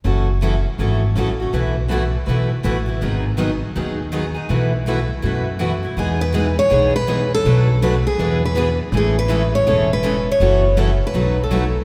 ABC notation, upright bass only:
X:1
M:4/4
L:1/8
Q:"Swing" 1/4=162
K:E
V:1 name="Upright bass" clef=bass
F,,,4 G,,,2 A,,,2 | B,,,4 B,,,2 A,,,2 | G,,,4 D,,4 | B,,,4 F,,4 |
E,,4 B,,,4 | B,,,4 E,,4 | A,,,4 E,,,4 | F,,,4 B,,,4 |]